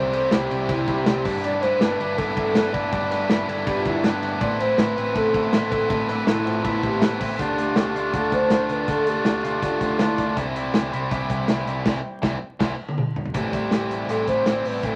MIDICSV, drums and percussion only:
0, 0, Header, 1, 2, 480
1, 0, Start_track
1, 0, Key_signature, 0, "minor"
1, 0, Tempo, 372208
1, 1853, Time_signature, 4, 2, 24, 8
1, 19287, End_track
2, 0, Start_track
2, 0, Title_t, "Drums"
2, 170, Note_on_c, 9, 51, 66
2, 299, Note_off_c, 9, 51, 0
2, 403, Note_on_c, 9, 38, 115
2, 413, Note_on_c, 9, 51, 67
2, 532, Note_off_c, 9, 38, 0
2, 542, Note_off_c, 9, 51, 0
2, 661, Note_on_c, 9, 51, 63
2, 790, Note_off_c, 9, 51, 0
2, 892, Note_on_c, 9, 36, 101
2, 892, Note_on_c, 9, 51, 73
2, 1020, Note_off_c, 9, 36, 0
2, 1021, Note_off_c, 9, 51, 0
2, 1131, Note_on_c, 9, 51, 55
2, 1132, Note_on_c, 9, 36, 95
2, 1260, Note_off_c, 9, 51, 0
2, 1261, Note_off_c, 9, 36, 0
2, 1371, Note_on_c, 9, 38, 109
2, 1372, Note_on_c, 9, 51, 74
2, 1500, Note_off_c, 9, 38, 0
2, 1501, Note_off_c, 9, 51, 0
2, 1616, Note_on_c, 9, 36, 111
2, 1619, Note_on_c, 9, 46, 83
2, 1619, Note_on_c, 9, 51, 65
2, 1745, Note_off_c, 9, 36, 0
2, 1748, Note_off_c, 9, 46, 0
2, 1748, Note_off_c, 9, 51, 0
2, 1855, Note_on_c, 9, 51, 73
2, 1857, Note_on_c, 9, 44, 61
2, 1984, Note_off_c, 9, 51, 0
2, 1986, Note_off_c, 9, 44, 0
2, 2096, Note_on_c, 9, 38, 42
2, 2097, Note_on_c, 9, 51, 68
2, 2225, Note_off_c, 9, 38, 0
2, 2226, Note_off_c, 9, 51, 0
2, 2331, Note_on_c, 9, 38, 113
2, 2341, Note_on_c, 9, 51, 67
2, 2460, Note_off_c, 9, 38, 0
2, 2470, Note_off_c, 9, 51, 0
2, 2585, Note_on_c, 9, 51, 62
2, 2714, Note_off_c, 9, 51, 0
2, 2815, Note_on_c, 9, 51, 73
2, 2816, Note_on_c, 9, 36, 104
2, 2944, Note_off_c, 9, 51, 0
2, 2945, Note_off_c, 9, 36, 0
2, 3056, Note_on_c, 9, 36, 96
2, 3060, Note_on_c, 9, 51, 56
2, 3185, Note_off_c, 9, 36, 0
2, 3189, Note_off_c, 9, 51, 0
2, 3291, Note_on_c, 9, 38, 104
2, 3291, Note_on_c, 9, 51, 75
2, 3420, Note_off_c, 9, 38, 0
2, 3420, Note_off_c, 9, 51, 0
2, 3534, Note_on_c, 9, 51, 63
2, 3537, Note_on_c, 9, 36, 100
2, 3663, Note_off_c, 9, 51, 0
2, 3666, Note_off_c, 9, 36, 0
2, 3774, Note_on_c, 9, 36, 103
2, 3774, Note_on_c, 9, 51, 73
2, 3903, Note_off_c, 9, 36, 0
2, 3903, Note_off_c, 9, 51, 0
2, 4015, Note_on_c, 9, 38, 42
2, 4017, Note_on_c, 9, 51, 69
2, 4144, Note_off_c, 9, 38, 0
2, 4146, Note_off_c, 9, 51, 0
2, 4250, Note_on_c, 9, 38, 121
2, 4260, Note_on_c, 9, 51, 69
2, 4379, Note_off_c, 9, 38, 0
2, 4389, Note_off_c, 9, 51, 0
2, 4500, Note_on_c, 9, 51, 63
2, 4629, Note_off_c, 9, 51, 0
2, 4731, Note_on_c, 9, 36, 106
2, 4733, Note_on_c, 9, 51, 75
2, 4860, Note_off_c, 9, 36, 0
2, 4862, Note_off_c, 9, 51, 0
2, 4971, Note_on_c, 9, 36, 101
2, 4977, Note_on_c, 9, 51, 53
2, 5100, Note_off_c, 9, 36, 0
2, 5106, Note_off_c, 9, 51, 0
2, 5211, Note_on_c, 9, 38, 108
2, 5212, Note_on_c, 9, 51, 69
2, 5340, Note_off_c, 9, 38, 0
2, 5341, Note_off_c, 9, 51, 0
2, 5453, Note_on_c, 9, 51, 63
2, 5582, Note_off_c, 9, 51, 0
2, 5687, Note_on_c, 9, 51, 77
2, 5690, Note_on_c, 9, 36, 113
2, 5816, Note_off_c, 9, 51, 0
2, 5819, Note_off_c, 9, 36, 0
2, 5938, Note_on_c, 9, 51, 69
2, 6067, Note_off_c, 9, 51, 0
2, 6165, Note_on_c, 9, 38, 117
2, 6175, Note_on_c, 9, 51, 66
2, 6294, Note_off_c, 9, 38, 0
2, 6304, Note_off_c, 9, 51, 0
2, 6419, Note_on_c, 9, 51, 63
2, 6548, Note_off_c, 9, 51, 0
2, 6646, Note_on_c, 9, 51, 74
2, 6648, Note_on_c, 9, 36, 101
2, 6775, Note_off_c, 9, 51, 0
2, 6777, Note_off_c, 9, 36, 0
2, 6889, Note_on_c, 9, 36, 101
2, 6893, Note_on_c, 9, 51, 55
2, 7018, Note_off_c, 9, 36, 0
2, 7022, Note_off_c, 9, 51, 0
2, 7127, Note_on_c, 9, 38, 107
2, 7127, Note_on_c, 9, 51, 72
2, 7256, Note_off_c, 9, 38, 0
2, 7256, Note_off_c, 9, 51, 0
2, 7373, Note_on_c, 9, 36, 102
2, 7377, Note_on_c, 9, 51, 67
2, 7502, Note_off_c, 9, 36, 0
2, 7506, Note_off_c, 9, 51, 0
2, 7611, Note_on_c, 9, 36, 109
2, 7611, Note_on_c, 9, 51, 78
2, 7740, Note_off_c, 9, 36, 0
2, 7740, Note_off_c, 9, 51, 0
2, 7852, Note_on_c, 9, 38, 41
2, 7854, Note_on_c, 9, 51, 67
2, 7981, Note_off_c, 9, 38, 0
2, 7983, Note_off_c, 9, 51, 0
2, 8087, Note_on_c, 9, 38, 118
2, 8098, Note_on_c, 9, 51, 70
2, 8216, Note_off_c, 9, 38, 0
2, 8227, Note_off_c, 9, 51, 0
2, 8343, Note_on_c, 9, 51, 64
2, 8472, Note_off_c, 9, 51, 0
2, 8571, Note_on_c, 9, 36, 110
2, 8572, Note_on_c, 9, 51, 76
2, 8700, Note_off_c, 9, 36, 0
2, 8701, Note_off_c, 9, 51, 0
2, 8812, Note_on_c, 9, 36, 91
2, 8816, Note_on_c, 9, 51, 51
2, 8941, Note_off_c, 9, 36, 0
2, 8945, Note_off_c, 9, 51, 0
2, 9047, Note_on_c, 9, 38, 110
2, 9048, Note_on_c, 9, 51, 75
2, 9176, Note_off_c, 9, 38, 0
2, 9177, Note_off_c, 9, 51, 0
2, 9294, Note_on_c, 9, 36, 90
2, 9294, Note_on_c, 9, 46, 86
2, 9294, Note_on_c, 9, 51, 67
2, 9422, Note_off_c, 9, 36, 0
2, 9423, Note_off_c, 9, 46, 0
2, 9423, Note_off_c, 9, 51, 0
2, 9533, Note_on_c, 9, 36, 103
2, 9535, Note_on_c, 9, 42, 89
2, 9662, Note_off_c, 9, 36, 0
2, 9664, Note_off_c, 9, 42, 0
2, 9779, Note_on_c, 9, 42, 77
2, 9908, Note_off_c, 9, 42, 0
2, 10007, Note_on_c, 9, 38, 110
2, 10017, Note_on_c, 9, 42, 78
2, 10136, Note_off_c, 9, 38, 0
2, 10146, Note_off_c, 9, 42, 0
2, 10268, Note_on_c, 9, 42, 77
2, 10397, Note_off_c, 9, 42, 0
2, 10493, Note_on_c, 9, 36, 100
2, 10497, Note_on_c, 9, 42, 89
2, 10622, Note_off_c, 9, 36, 0
2, 10626, Note_off_c, 9, 42, 0
2, 10731, Note_on_c, 9, 36, 92
2, 10735, Note_on_c, 9, 42, 60
2, 10860, Note_off_c, 9, 36, 0
2, 10864, Note_off_c, 9, 42, 0
2, 10965, Note_on_c, 9, 38, 106
2, 10965, Note_on_c, 9, 42, 92
2, 11094, Note_off_c, 9, 38, 0
2, 11094, Note_off_c, 9, 42, 0
2, 11213, Note_on_c, 9, 42, 76
2, 11342, Note_off_c, 9, 42, 0
2, 11449, Note_on_c, 9, 42, 82
2, 11451, Note_on_c, 9, 36, 104
2, 11578, Note_off_c, 9, 42, 0
2, 11580, Note_off_c, 9, 36, 0
2, 11694, Note_on_c, 9, 42, 80
2, 11823, Note_off_c, 9, 42, 0
2, 11927, Note_on_c, 9, 38, 111
2, 11937, Note_on_c, 9, 42, 77
2, 12056, Note_off_c, 9, 38, 0
2, 12066, Note_off_c, 9, 42, 0
2, 12181, Note_on_c, 9, 42, 75
2, 12310, Note_off_c, 9, 42, 0
2, 12412, Note_on_c, 9, 36, 96
2, 12414, Note_on_c, 9, 42, 89
2, 12541, Note_off_c, 9, 36, 0
2, 12543, Note_off_c, 9, 42, 0
2, 12651, Note_on_c, 9, 36, 93
2, 12654, Note_on_c, 9, 42, 61
2, 12780, Note_off_c, 9, 36, 0
2, 12783, Note_off_c, 9, 42, 0
2, 12887, Note_on_c, 9, 38, 108
2, 12888, Note_on_c, 9, 42, 86
2, 13016, Note_off_c, 9, 38, 0
2, 13017, Note_off_c, 9, 42, 0
2, 13130, Note_on_c, 9, 42, 78
2, 13133, Note_on_c, 9, 36, 91
2, 13259, Note_off_c, 9, 42, 0
2, 13262, Note_off_c, 9, 36, 0
2, 13371, Note_on_c, 9, 36, 104
2, 13372, Note_on_c, 9, 42, 88
2, 13500, Note_off_c, 9, 36, 0
2, 13501, Note_off_c, 9, 42, 0
2, 13615, Note_on_c, 9, 42, 80
2, 13744, Note_off_c, 9, 42, 0
2, 13849, Note_on_c, 9, 38, 113
2, 13859, Note_on_c, 9, 42, 80
2, 13977, Note_off_c, 9, 38, 0
2, 13988, Note_off_c, 9, 42, 0
2, 14100, Note_on_c, 9, 42, 71
2, 14229, Note_off_c, 9, 42, 0
2, 14331, Note_on_c, 9, 36, 99
2, 14331, Note_on_c, 9, 42, 88
2, 14460, Note_off_c, 9, 36, 0
2, 14460, Note_off_c, 9, 42, 0
2, 14571, Note_on_c, 9, 36, 92
2, 14575, Note_on_c, 9, 42, 64
2, 14700, Note_off_c, 9, 36, 0
2, 14704, Note_off_c, 9, 42, 0
2, 14807, Note_on_c, 9, 38, 101
2, 14808, Note_on_c, 9, 42, 86
2, 14936, Note_off_c, 9, 38, 0
2, 14937, Note_off_c, 9, 42, 0
2, 15055, Note_on_c, 9, 42, 80
2, 15184, Note_off_c, 9, 42, 0
2, 15291, Note_on_c, 9, 36, 102
2, 15291, Note_on_c, 9, 38, 108
2, 15292, Note_on_c, 9, 49, 79
2, 15420, Note_off_c, 9, 36, 0
2, 15420, Note_off_c, 9, 38, 0
2, 15421, Note_off_c, 9, 49, 0
2, 15772, Note_on_c, 9, 36, 109
2, 15774, Note_on_c, 9, 38, 99
2, 15901, Note_off_c, 9, 36, 0
2, 15902, Note_off_c, 9, 38, 0
2, 16253, Note_on_c, 9, 36, 107
2, 16255, Note_on_c, 9, 38, 105
2, 16256, Note_on_c, 9, 49, 76
2, 16382, Note_off_c, 9, 36, 0
2, 16383, Note_off_c, 9, 38, 0
2, 16385, Note_off_c, 9, 49, 0
2, 16616, Note_on_c, 9, 48, 65
2, 16737, Note_on_c, 9, 47, 80
2, 16745, Note_off_c, 9, 48, 0
2, 16866, Note_off_c, 9, 47, 0
2, 16975, Note_on_c, 9, 43, 102
2, 17095, Note_off_c, 9, 43, 0
2, 17095, Note_on_c, 9, 43, 89
2, 17210, Note_on_c, 9, 42, 81
2, 17212, Note_on_c, 9, 36, 93
2, 17224, Note_off_c, 9, 43, 0
2, 17339, Note_off_c, 9, 42, 0
2, 17341, Note_off_c, 9, 36, 0
2, 17451, Note_on_c, 9, 36, 94
2, 17453, Note_on_c, 9, 42, 70
2, 17580, Note_off_c, 9, 36, 0
2, 17582, Note_off_c, 9, 42, 0
2, 17684, Note_on_c, 9, 38, 97
2, 17694, Note_on_c, 9, 42, 70
2, 17813, Note_off_c, 9, 38, 0
2, 17823, Note_off_c, 9, 42, 0
2, 17937, Note_on_c, 9, 42, 66
2, 18066, Note_off_c, 9, 42, 0
2, 18171, Note_on_c, 9, 42, 83
2, 18300, Note_off_c, 9, 42, 0
2, 18410, Note_on_c, 9, 36, 87
2, 18413, Note_on_c, 9, 42, 60
2, 18539, Note_off_c, 9, 36, 0
2, 18542, Note_off_c, 9, 42, 0
2, 18647, Note_on_c, 9, 38, 95
2, 18648, Note_on_c, 9, 42, 85
2, 18776, Note_off_c, 9, 38, 0
2, 18776, Note_off_c, 9, 42, 0
2, 18894, Note_on_c, 9, 46, 74
2, 19023, Note_off_c, 9, 46, 0
2, 19123, Note_on_c, 9, 42, 77
2, 19130, Note_on_c, 9, 36, 93
2, 19252, Note_off_c, 9, 42, 0
2, 19259, Note_off_c, 9, 36, 0
2, 19287, End_track
0, 0, End_of_file